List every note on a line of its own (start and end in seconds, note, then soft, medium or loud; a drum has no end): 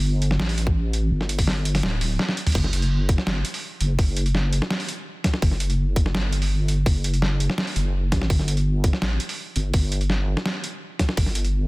0.00 0.41 G1 loud
0.22 closed hi-hat medium
0.31 snare medium
0.39 1.10 A1 loud
0.39 snare loud
0.49 open hi-hat soft
0.58 closed hi-hat medium
0.67 kick loud
0.93 closed hi-hat medium
1.11 1.85 G1 loud
1.21 snare soft
1.29 closed hi-hat medium
1.39 kick medium
1.39 open hi-hat medium
1.47 snare medium
1.65 closed hi-hat medium
1.75 snare medium
1.75 open hi-hat soft
1.83 2.00 D1 loud
1.83 snare loud
2.01 2.18 D1 medium
2.01 open hi-hat medium
2.19 snare medium
2.29 snare medium
2.37 closed hi-hat medium
2.47 mid tom medium
2.47 open hi-hat medium
2.52 3.17 F#1 loud
2.52 kick loud
2.52 open hi-hat medium
2.55 open hi-hat medium
2.55 crash loud
2.58 open hi-hat soft
2.64 snare soft
2.73 closed hi-hat medium
2.82 closed hi-hat soft
3.09 kick loud
3.09 closed hi-hat medium
3.18 snare medium
3.27 3.43 G1 medium
3.27 snare loud
3.45 closed hi-hat medium
3.54 open hi-hat soft
3.81 3.97 F#1 medium
3.81 closed hi-hat medium
3.99 4.61 F#1 loud
3.99 kick loud
3.99 open hi-hat medium
4.17 closed hi-hat medium
4.26 closed hi-hat soft
4.35 snare medium
4.53 closed hi-hat medium
4.62 snare medium
4.70 snare loud
4.80 open hi-hat soft
4.89 closed hi-hat medium
5.24 kick medium
5.24 snare medium
5.24 closed hi-hat medium
5.34 snare medium
5.42 6.16 F#1 loud
5.42 kick loud
5.42 open hi-hat medium
5.51 snare soft
5.60 closed hi-hat medium
5.70 closed hi-hat soft
5.96 kick loud
5.96 closed hi-hat medium
6.06 snare medium
6.14 6.85 G1 loud
6.14 snare loud
6.33 closed hi-hat medium
6.42 open hi-hat soft
6.68 closed hi-hat medium
6.86 7.48 F#1 loud
6.86 kick loud
6.86 open hi-hat medium
7.04 closed hi-hat medium
7.14 closed hi-hat soft
7.22 snare medium
7.40 closed hi-hat medium
7.50 snare medium
7.58 snare loud
7.67 open hi-hat soft
7.76 8.13 F#1 loud
7.76 closed hi-hat medium
8.12 8.29 A1 loud
8.12 kick medium
8.12 snare medium
8.12 closed hi-hat medium
8.22 snare medium
8.30 8.92 G1 loud
8.30 kick loud
8.30 open hi-hat medium
8.39 snare soft
8.48 closed hi-hat medium
8.57 closed hi-hat soft
8.84 kick loud
8.84 closed hi-hat medium
8.93 snare medium
9.02 9.18 A1 medium
9.02 snare loud
9.20 closed hi-hat medium
9.29 open hi-hat soft
9.56 9.72 G1 medium
9.56 closed hi-hat medium
9.74 10.36 G1 loud
9.74 kick loud
9.74 open hi-hat medium
9.92 closed hi-hat medium
10.01 closed hi-hat soft
10.10 snare medium
10.37 snare medium
10.46 snare loud
10.64 closed hi-hat medium
10.99 kick medium
10.99 snare medium
10.99 closed hi-hat medium
11.09 snare medium
11.17 11.68 G1 loud
11.17 kick loud
11.17 open hi-hat medium
11.26 snare soft
11.35 closed hi-hat medium
11.45 closed hi-hat soft